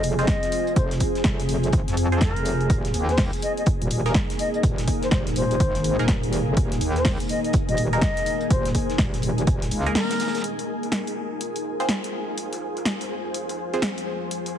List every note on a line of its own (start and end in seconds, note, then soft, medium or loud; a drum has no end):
0.00 0.26 F1 medium
0.00 2.66 C4 medium
0.00 2.66 F4 medium
0.00 3.66 F4 medium
0.00 10.40 G#4 medium
0.00 14.58 G#4 medium
0.00 3.95 C5 medium
0.00 14.58 G#5 medium
0.00 closed hi-hat medium
0.00 open hi-hat loud
0.19 0.25 C4 medium
0.19 0.25 F4 medium
0.19 0.25 G#4 medium
0.19 0.25 C5 loud
0.19 0.74 D#5 medium
0.19 snare soft
0.19 closed hi-hat soft
0.27 kick loud
0.27 snare loud
0.27 closed hi-hat medium
0.43 snare soft
0.43 closed hi-hat medium
0.52 closed hi-hat medium
0.52 open hi-hat medium
0.67 closed hi-hat soft
0.76 0.99 F1 medium
0.76 0.94 C5 medium
0.76 kick loud
0.76 closed hi-hat medium
0.91 snare medium
0.91 closed hi-hat soft
1.00 kick medium
1.00 closed hi-hat medium
1.00 open hi-hat loud
1.15 snare soft
1.15 closed hi-hat soft
1.24 1.47 F1 medium
1.24 kick loud
1.24 snare loud
1.24 closed hi-hat medium
1.39 snare soft
1.39 closed hi-hat soft
1.49 1.72 F1 loud
1.49 closed hi-hat medium
1.49 open hi-hat medium
1.63 closed hi-hat soft
1.73 1.86 G#1 medium
1.73 kick loud
1.73 closed hi-hat medium
1.88 2.34 F2 loud
1.88 snare soft
1.88 closed hi-hat soft
1.97 closed hi-hat medium
1.97 open hi-hat loud
2.12 2.69 C4 medium
2.12 2.69 F4 medium
2.12 2.69 G#4 medium
2.12 2.69 C5 medium
2.12 closed hi-hat soft
2.21 2.76 A#4 medium
2.21 kick loud
2.21 snare loud
2.21 closed hi-hat medium
2.36 2.68 F1 medium
2.36 closed hi-hat soft
2.45 closed hi-hat medium
2.45 open hi-hat medium
2.61 closed hi-hat soft
2.70 2.93 D#1 loud
2.70 10.40 A#3 medium
2.70 12.36 D#4 medium
2.70 10.40 D#4 medium
2.70 kick loud
2.70 closed hi-hat medium
2.82 12.23 A#4 medium
2.82 snare soft
2.82 closed hi-hat soft
2.94 3.31 D#2 loud
2.94 closed hi-hat medium
2.94 open hi-hat loud
3.09 3.22 C5 medium
3.09 snare soft
3.09 closed hi-hat soft
3.17 kick loud
3.17 snare loud
3.17 closed hi-hat medium
3.17 open hi-hat medium
3.33 closed hi-hat soft
3.42 3.52 D#5 medium
3.42 closed hi-hat medium
3.42 open hi-hat medium
3.57 3.63 D#5 medium
3.57 closed hi-hat soft
3.66 kick loud
3.66 closed hi-hat medium
3.82 4.14 D#1 loud
3.82 closed hi-hat soft
3.91 closed hi-hat medium
3.91 open hi-hat loud
4.06 4.12 A#3 medium
4.06 4.12 D#4 medium
4.06 4.12 G#4 medium
4.06 4.12 A#4 loud
4.06 snare soft
4.06 closed hi-hat soft
4.14 kick loud
4.14 snare loud
4.14 closed hi-hat medium
4.30 snare soft
4.30 closed hi-hat soft
4.39 4.49 D#5 medium
4.39 closed hi-hat medium
4.39 open hi-hat medium
4.54 4.60 D#5 medium
4.54 closed hi-hat soft
4.63 4.86 D#1 loud
4.63 kick loud
4.63 closed hi-hat medium
4.78 snare medium
4.78 closed hi-hat medium
4.88 kick medium
4.88 closed hi-hat medium
4.88 open hi-hat loud
5.02 5.08 C5 medium
5.02 snare soft
5.02 closed hi-hat soft
5.11 5.35 D#1 loud
5.11 5.21 C5 medium
5.11 kick loud
5.11 snare loud
5.11 closed hi-hat medium
5.27 snare soft
5.27 closed hi-hat medium
5.36 5.59 D#1 medium
5.36 6.05 C5 medium
5.36 closed hi-hat medium
5.36 open hi-hat medium
5.51 closed hi-hat soft
5.60 5.97 G#1 loud
5.60 kick loud
5.60 closed hi-hat medium
5.75 snare soft
5.75 closed hi-hat soft
5.84 closed hi-hat medium
5.84 open hi-hat loud
5.99 6.45 D#1 loud
5.99 6.05 A#3 medium
5.99 6.05 D#4 medium
5.99 6.05 G#4 medium
5.99 6.05 A#4 loud
5.99 closed hi-hat soft
6.08 kick loud
6.08 snare loud
6.08 closed hi-hat medium
6.23 closed hi-hat medium
6.33 closed hi-hat medium
6.33 open hi-hat medium
6.48 6.56 F1 medium
6.57 6.80 D#1 loud
6.57 kick loud
6.57 closed hi-hat medium
6.72 snare soft
6.72 closed hi-hat medium
6.81 7.18 D#2 loud
6.81 closed hi-hat medium
6.81 open hi-hat loud
6.96 7.09 C5 medium
6.96 snare soft
6.96 closed hi-hat soft
7.05 kick loud
7.05 snare loud
7.05 closed hi-hat medium
7.05 open hi-hat medium
7.20 closed hi-hat medium
7.29 7.39 D#5 medium
7.29 closed hi-hat medium
7.29 open hi-hat medium
7.44 7.50 D#5 medium
7.44 closed hi-hat soft
7.53 kick loud
7.53 closed hi-hat medium
7.69 8.01 D#1 loud
7.69 7.82 D#5 medium
7.69 closed hi-hat medium
7.77 closed hi-hat medium
7.77 open hi-hat loud
7.93 7.99 A#3 medium
7.93 7.99 D#4 medium
7.93 7.99 G#4 medium
7.93 7.99 A#4 loud
7.93 8.49 D#5 loud
7.93 snare soft
7.93 closed hi-hat soft
8.01 kick loud
8.01 snare loud
8.01 closed hi-hat medium
8.17 snare soft
8.17 closed hi-hat medium
8.26 closed hi-hat medium
8.26 open hi-hat medium
8.41 closed hi-hat soft
8.50 8.73 D#1 loud
8.50 8.68 C5 medium
8.50 kick loud
8.50 closed hi-hat medium
8.65 snare soft
8.65 closed hi-hat medium
8.75 kick medium
8.75 closed hi-hat medium
8.75 open hi-hat loud
8.89 snare soft
8.89 closed hi-hat soft
8.98 9.22 D#1 medium
8.98 kick loud
8.98 snare loud
8.98 closed hi-hat medium
9.14 snare soft
9.14 closed hi-hat medium
9.22 9.46 D#1 loud
9.22 closed hi-hat medium
9.22 open hi-hat medium
9.38 closed hi-hat soft
9.47 9.70 D#1 medium
9.47 kick loud
9.47 closed hi-hat medium
9.62 snare soft
9.62 closed hi-hat medium
9.71 9.94 C#2 medium
9.71 closed hi-hat medium
9.71 open hi-hat loud
9.86 9.93 A#3 medium
9.86 9.93 D#4 medium
9.86 9.93 G#4 medium
9.86 9.93 A#4 loud
9.86 closed hi-hat soft
9.95 10.44 A#4 loud
9.95 snare loud
9.95 closed hi-hat medium
9.95 open hi-hat medium
10.10 snare loud
10.10 closed hi-hat medium
10.10 open hi-hat medium
10.20 snare medium
10.20 open hi-hat medium
10.28 snare medium
10.28 open hi-hat medium
10.34 snare medium
10.34 closed hi-hat soft
10.34 open hi-hat medium
10.40 snare medium
10.40 closed hi-hat medium
10.40 open hi-hat medium
10.44 14.58 F3 medium
10.44 14.58 F4 medium
10.44 14.58 G#4 medium
10.44 14.58 C5 medium
10.44 closed hi-hat medium
10.59 snare soft
10.59 closed hi-hat soft
10.69 closed hi-hat medium
10.83 snare soft
10.83 closed hi-hat soft
10.92 snare loud
10.92 closed hi-hat medium
10.92 open hi-hat medium
11.07 closed hi-hat soft
11.17 14.58 C5 medium
11.17 closed hi-hat medium
11.41 closed hi-hat medium
11.56 closed hi-hat soft
11.64 closed hi-hat medium
11.80 11.86 C4 medium
11.80 11.86 F4 medium
11.80 11.86 G#4 medium
11.80 11.86 C5 loud
11.80 snare soft
11.80 closed hi-hat soft
11.89 snare loud
11.89 closed hi-hat medium
12.04 snare soft
12.04 closed hi-hat soft
12.13 closed hi-hat medium
12.28 closed hi-hat soft
12.38 closed hi-hat medium
12.52 snare soft
12.52 closed hi-hat soft
12.62 closed hi-hat medium
12.77 snare soft
12.77 closed hi-hat soft
12.85 snare loud
12.85 closed hi-hat medium
13.01 snare soft
13.01 closed hi-hat soft
13.11 closed hi-hat medium
13.25 closed hi-hat soft
13.34 closed hi-hat medium
13.49 snare soft
13.49 closed hi-hat soft
13.58 closed hi-hat medium
13.74 13.80 C4 medium
13.74 13.80 F4 medium
13.74 13.80 G#4 medium
13.74 13.80 C5 medium
13.74 closed hi-hat soft
13.82 snare loud
13.82 closed hi-hat medium
13.98 closed hi-hat soft
14.07 closed hi-hat medium
14.31 closed hi-hat medium
14.46 snare soft
14.46 closed hi-hat soft